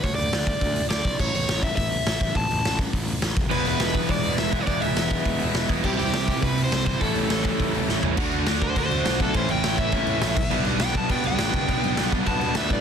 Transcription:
<<
  \new Staff \with { instrumentName = "Overdriven electric guitar" } { \time 4/4 \key e \mixolydian \tempo 4 = 206 cis''8 d''2~ d''8 d''4 | cis''8 cis''4 e''8 e''2 | a''4. r2 r8 | b'8 b'4. d''4 e''8. cis''16 |
d''8 e''2. r8 | g'8 g'4. b'8. c''8. c''8 | a'2. r4 | \key g \lydian r4. c''8 c''4. a'8 |
c''8 g''4 e''2~ e''8~ | e''8 r8 g''8 a''8 g''8 g''4.~ | g''4. r8 a''4 e''8 d''8 | }
  \new Staff \with { instrumentName = "Overdriven electric guitar" } { \time 4/4 \key e \mixolydian r1 | r1 | r1 | <e gis b e'>2.~ <e gis b e'>8 <e gis b e'>8 |
<e gis b e'>2.~ <e gis b e'>8 <e gis b e'>8 | <c e g c' e'>2.~ <c e g c' e'>8 <c e g c' e'>8 | <a, e g cis' e'>2.~ <a, e g cis' e'>8 <a, e g cis' e'>8 | \key g \lydian <d a d' fis'>4 <d a d' fis'>4 <d a d' fis'>4 <d a d' fis'>4 |
<a, e a cis' e'>4 <a, e a cis' e'>4 <a, e a cis' e'>4 <a, e a cis' e'>8 r8 | <b, g b d'>4 <b, g b d'>4 <b, g b d'>4 <b, g b d'>4 | <b, g b d'>4 <b, g b d'>4 <b, g b d'>4 <b, g b d'>4 | }
  \new Staff \with { instrumentName = "Overdriven electric guitar" } { \time 4/4 \key e \mixolydian r1 | r1 | r1 | <e gis b e'>1 |
<e gis b e'>1 | <c e g c' e'>1 | <a, e g cis' e'>1 | \key g \lydian <d a d' fis'>4 <d a d' fis'>4 <d a d' fis'>4 <d a d' fis'>4 |
<a, e a cis' e'>4 <a, e a cis' e'>4 <a, e a cis' e'>4 <a, e a cis' e'>8 r8 | <b, g b d'>4 <b, g b d'>4 <b, g b d'>4 <b, g b d'>4 | <b, g b d'>4 <b, g b d'>4 <b, g b d'>4 <b, g b d'>4 | }
  \new Staff \with { instrumentName = "Distorted electric guitar" } { \clef bass \time 4/4 \key e \mixolydian r1 | r1 | r1 | <e, b, e>2~ <e, b, e>8 <e, b, e>8 <e, b, e>4 |
<e, b, e>2~ <e, b, e>8 <e, b, e>8 <e, b, e>4 | <c g c'>2~ <c g c'>8 <c g c'>8 <c g c'>4 | <a, e a>2~ <a, e a>8 <a, e a>8 <a, e a>4 | \key g \lydian <d a d'>4 <d a d'>4 <d a d'>4 <d a d'>4 |
<a, e a>4 <a, e a>4 <a, e a>4 <a, e a>8 r8 | <g, d g>4 <g, d g>4 <g, d g>4 <g, d g>4 | <g, d g>4 <g, d g>4 <g, d g>4 <g, d g>4 | }
  \new Staff \with { instrumentName = "Picked electric bass" } { \clef bass \time 4/4 \key e \mixolydian d,8 d,8 d,4 d,4 d,8 b,,8 | a,,8 a,,8 a,,4 a,,4 a,,8 a,,8 | a,,8 a,,8 a,,4 a,,4 a,,8 e,,8 | e,,8 e,,8 e,,4 e,,4 e,,8 e,,8 |
e,,8 e,,8 e,,4 e,,4 e,,8 e,,8 | c,8 c,8 c,4 c,4 c,8 g,,8 | a,,8 a,,8 a,,4 a,,4 a,,8 a,,8 | \key g \lydian d,8 d,8 d,8 d,8 d8 d,8 b,,8 b,,8 |
a,,8 a,,8 a,,8 a,,8 a,,8 a,8 bes,,8 b,,8 | b,,8 b,,8 b,,8 b,,8 b,8 b,,8 a,,8 fis,,8 | b,,8 b,,8 b,,8 b,,8 b,,8 b,8 d,8 a,8 | }
  \new DrumStaff \with { instrumentName = "Drums" } \drummode { \time 4/4 <hho bd>8 hho8 <hho sn>8 <hho bd>8 <hho bd>8 hho8 <hho sn>8 <hho bd>8 | <cymc bd>8 hho8 <hho sn>8 <hho bd>8 <hho bd>8 hho8 <hho sn>8 <hho bd>8 | <hho bd>8 hho8 <hho sn>8 <hho bd>8 <hho bd>8 hho8 <hho sn>8 <hho bd>8 | cymc8 hho8 <hho sn>8 <hho bd>8 <hho bd>8 hho8 <hho sn>8 <hho bd>8 |
<hho bd>8 hho8 <hho sn>8 <hho bd>8 <hho bd>8 hho8 <hho sn>8 <hho bd>8 | <cymc bd>8 hho8 <hho sn>8 <hho bd>8 <hho bd>8 hho8 <hho sn>8 <hho bd>8 | <hho bd>8 hho8 <hho sn>8 <hho bd>8 <hho bd>8 hho8 sn8 tomfh8 | <cymc bd>8 cymc8 <cymc sn>8 <cymc bd>8 <cymc bd>8 cymc8 <cymc sn>8 <cymc bd>8 |
<cymc bd>8 cymc8 <cymc sn>8 <cymc bd>8 <cymc bd>8 cymc8 <cymc sn>8 <cymc bd>8 | cymc8 cymc8 <cymc sn>8 <cymc bd>8 <cymc bd>8 cymc8 <cymc sn>8 <cymc bd>8 | <cymc bd>8 cymc8 <cymc sn>8 <cymc bd>8 <cymc bd>8 cymc8 <cymc sn>8 <cymc bd>8 | }
>>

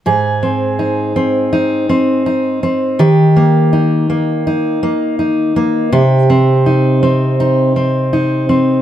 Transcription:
\new Staff \with { instrumentName = "Steel-string acoustic guitar" } { \time 4/4 \key aes \major \tempo 4 = 82 <aes, aes'>8 c'8 ees'8 c'8 ees'8 c'8 ees'8 c'8 | <ees g'>8 bes8 ees'8 bes8 ees'8 bes8 ees'8 bes8 | <c g'>8 c'8 ees'8 c'8 ees'8 c'8 ees'8 c'8 | }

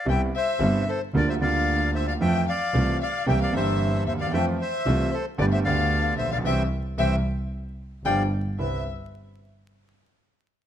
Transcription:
<<
  \new Staff \with { instrumentName = "Bandoneon" } { \time 4/4 \key c \major \tempo 4 = 113 <e'' g''>8 <c'' e''>4 <a' c''>8 <bes' d''>16 <c'' e''>16 <d'' f''>4 <c'' e''>16 <d'' f''>16 | <e'' g''>8 <d'' f''>4 <d'' f''>8 <e'' g''>16 <d'' f''>16 <c'' e''>4 <c'' e''>16 <d'' f''>16 | <e'' g''>8 <c'' e''>4 <a' c''>8 <b' d''>16 <c'' e''>16 <d'' f''>4 <c'' e''>16 <d'' f''>16 | <c'' e'' g''>8 r8 <c'' e'' g''>8 r4. <d'' f'' g''>8 r8 |
e''8 r2. r8 | }
  \new Staff \with { instrumentName = "Violin" } { \time 4/4 \key c \major g''8 e''4 c''8 d''16 e''16 f''4 e''16 f''16 | g''8 f''4 f''8 g''16 f''16 e''4 e''16 f''16 | g''8 e''4 c''8 d''16 e''16 f''4 e''16 f''16 | e''8 r8 e''8 r4. g''8 r8 |
e''8 r2. r8 | }
  \new Staff \with { instrumentName = "Grand piano" } { \clef bass \time 4/4 \key c \major << { <c, c g b e'>8 r8 <g,, g, c g b e'>8 r8 <d, d g bes f'>8 <d, d g bes f'>4. | <f, e f a c' f'>8 r8 <c, c e a c' f'>8 r8 <c, c e bes c' g'>8 <g,, g, e bes c' g'>4. | <f, e f a c' f'>8 r8 <c, c e a c' f'>8 r8 <g,, g, d a b g'>8 <d, d a b g'>4. | <c e g>8 r8 <c e g>8 r4. <d f g>8 r8 |
<c, c' e' b'>8 r2. r8 | } \\ { r1 | r2. r8 r32 d,32 ees,32 e,32 | r2. r8 r32 a,,32 bes,,32 b,,32 | r1 |
r1 | } >> }
  \new Staff \with { instrumentName = "Double bass" } { \clef bass \time 4/4 \key c \major c,8 r8 g,,8 r8 d,8 d,4. | f,8 r8 c,8 r8 c,8 g,,4 ees,8 | f,8 r8 c,8 r8 g,,8 d,4 bes,,8 | c,8 r8 c,8 r4. g,,8 r8 |
c,8 r2. r8 | }
>>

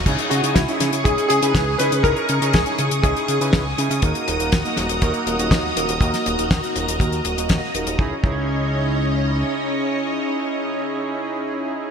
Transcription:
<<
  \new Staff \with { instrumentName = "String machine" } { \time 4/4 \key cis \dorian \tempo 4 = 121 << { dis'''1~ | dis'''1~ | dis'''1~ | dis'''1 |
<cis' cis'' dis''>1~ | <cis' cis'' dis''>1 | } \\ { <gis' cis'''>1~ | <gis' cis'''>1 | <fis' dis'' ais''>1~ | <fis' dis'' ais''>1 |
r1 | r1 | } >> }
  \new Staff \with { instrumentName = "Electric grand piano" } { \time 4/4 \key cis \dorian r8 fis'8 e'4 gis'8 gis'4 b'8 | ais'4 gis'4 gis'4. r8 | r1 | r1 |
r1 | r1 | }
  \new Staff \with { instrumentName = "Analog polysynth" } { \time 4/4 \key cis \dorian <cis' dis' e' gis'>8. <cis' dis' e' gis'>16 r16 <cis' dis' e' gis'>8 r16 <cis' dis' e' gis'>8. <cis' dis' e' b'>8 r16 <cis' dis' e' gis'>16 r16 | <cis' dis' e' gis'>8. <cis' dis' e' gis'>16 r16 <cis' dis' e' gis'>8 r16 <cis' dis' e' gis'>8. <cis' dis' e' b'>8 r16 <cis' dis' e' gis'>16 r16 | <ais dis' fis' ais'>8. <ais dis' fis' ais'>16 r16 <ais dis' fis' ais'>8 r16 <ais dis' fis' ais'>8. <ais dis' fis' dis''>8 r16 <ais dis' fis' ais'>16 r16 | <ais dis' fis' ais'>8. <ais dis' fis' ais'>16 r16 <ais dis' fis' ais'>8 r16 <ais dis' fis' ais'>8. <ais dis' fis' dis''>8 r16 <ais dis' fis' ais'>16 r16 |
<cis' dis' e' gis'>16 r16 <cis' dis' e' gis'>2.~ <cis' dis' e' gis'>8~ | <cis' dis' e' gis'>1 | }
  \new Staff \with { instrumentName = "Analog synth bass" } { \clef bass \time 4/4 \key cis \dorian cis,16 r16 cis16 cis16 cis,16 r16 cis16 cis16 cis,16 r16 cis16 cis16 cis,8 cis16 cis16 | cis,16 r16 cis16 cis16 cis,16 r16 cis16 cis16 cis,16 r16 cis16 cis16 cis,8 cis16 cis16 | dis,16 r16 dis,,16 dis,,16 dis,16 r16 dis,,16 dis,,16 dis,16 r16 dis,,16 dis,,16 dis,8 dis,,16 dis,,16 | dis,16 r16 dis,,16 dis,,16 dis,16 r16 dis,,16 dis,,16 dis,8 dis,,16 dis,,16 dis,16 r16 dis,,16 dis,,16 |
cis,16 r16 cis,2~ cis,8 r4 | r1 | }
  \new DrumStaff \with { instrumentName = "Drums" } \drummode { \time 4/4 <cymc hh bd>16 hh16 hh16 hh16 <hh bd sn>16 hh16 <hh sn>16 hh16 <hh bd>16 hh16 hh16 hh16 <hh bd sn>8 hh16 hh16 | <hh bd>16 hh16 hh16 hh16 <hh bd sn>16 hh16 hh16 hh16 <hh bd>16 hh16 hh16 hh16 <hh bd sn>8 hh16 hh16 | <hh bd>16 hh16 hh16 hh16 <hh bd sn>16 hh16 <hh sn>16 hh16 <hh bd>16 hh16 hh16 hh16 <hh bd sn>8 hh16 hh16 | <hh bd>16 <hh sn>16 hh16 hh16 <hh bd sn>16 hh16 hh16 hh16 <hh bd>16 hh16 hh16 hh16 <hh bd sn>8 hh16 hh16 |
bd8 bd8 r4 r4 r4 | r4 r4 r4 r4 | }
>>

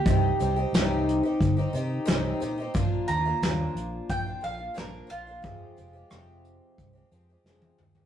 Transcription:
<<
  \new Staff \with { instrumentName = "Mandolin" } { \time 4/4 \key c \minor \tempo 4 = 89 g'4. r2 r8 | r8 bes''4. g''8 f''8 bes'8 f'8~ | f'2~ f'8 r4. | }
  \new Staff \with { instrumentName = "Twelve-string acoustic guitar" } { \time 4/4 \key c \minor <c ees c' ees' g'>8 <ees c' ees' g'>16 <c' ees' g'>16 <c ees c' ees' g'>8. <c' ees' g'>8 <c' ees' g'>16 <ees c' ees' g'>8 <c ees c' ees' g'>8 <ees c' ees' g'>16 <c' ees' g'>16 | <bes, f bes d' f'>8 <f bes d' f'>16 <bes d' f'>16 <bes, f bes d' f'>4~ <bes, f bes d' f'>16 <bes d' f'>16 <f bes d' f'>16 <bes d' f'>16 <bes, f bes d' f'>8 <f bes d' f'>16 <bes d' f'>16 | <f, c f aes c' g'>8 <f aes c' g'>16 <f aes c' g'>16 <f, c f aes c' g'>4~ <f, c f aes c' g'>16 <f aes c' g'>16 <f aes c' g'>16 <f aes c' g'>16 <f, c f aes c' g'>8 <f aes c' g'>16 <f aes c' g'>16 | }
  \new Staff \with { instrumentName = "Fingered electric bass" } { \clef bass \time 4/4 \key c \minor c,8 c,8 c,4 g,,8 c8 c,8 bes,8 | bes,,8 ees,8 ees,8 bes,,8 bes,,8 bes,,8 bes,,8 bes,,8 | f,,8 f,,8 f,,4 c,8 f,8 f,,8 ees,8 | }
  \new DrumStaff \with { instrumentName = "Drums" } \drummode { \time 4/4 <hh bd>8 hh8 <hh sn>8 hh8 <hh bd>8 hh8 <hh sn>8 hh8 | <hh bd>8 hh8 <hh sn>8 hh8 <hh bd>8 hh8 <hh sn>8 hh8 | <hh bd>8 hh8 <hh ss>8 hh8 <hh bd>8 hh8 sn16 tommh16 toml16 tomfh16 | }
>>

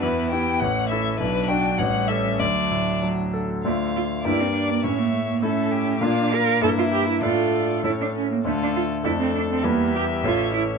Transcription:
<<
  \new Staff \with { instrumentName = "Violin" } { \time 2/4 \key d \major \tempo 4 = 100 b'8 g''8 fis''8 e''8 | b'8 g''8 fis''8 e''8 | d''4 r4 | \key d \minor r4 d''4 |
cis''4 a'8 g'8 | f'4 e'4 | a'4. r8 | f'4 a'4 |
e''2 | }
  \new Staff \with { instrumentName = "Violin" } { \time 2/4 \key d \major e'4 cis'4 | d'4 cis'4 | d'4. r8 | \key d \minor f''4 d''4 |
e''4 e''4 | f''4 e''4 | d''4 cis''8 r8 | a'4 a'4 |
g'4 cis''4 | }
  \new Staff \with { instrumentName = "Cello" } { \time 2/4 \key d \major b4 a4 | fis4 g4 | fis4. r8 | \key d \minor a8 f'8 e'16 c'16 d'16 bes16 |
cis'16 bes16 a16 bes16 cis'4 | d'8 bes'8 a'16 f'16 g'16 e'16 | f'4 e'16 d'16 cis'16 bes16 | a16 d'16 f'8 e'16 c'16 d'16 c'16 |
bes8 g'8 f'8 e'8 | }
  \new Staff \with { instrumentName = "Grand piano" } { \time 2/4 \key d \major e,8 <e' g'>8 a,,8 <e' a'>8 | b,,8 <d' fis'>8 a,,8 <cis' a'>8 | d,8 a,8 fis8 a'8 | \key d \minor <d, a f' d''>4 <g, bes g' d''>4 |
a,4 <a e' a'>4 | <bes, bes d' f'>4 <g, bes e'>4 | <a, a d' a'>4 <a, a cis' a'>4 | <d, a d' a'>4 <f, a d' a'>4 |
<e, g e' bes'>4 <a,, a cis' a'>4 | }
>>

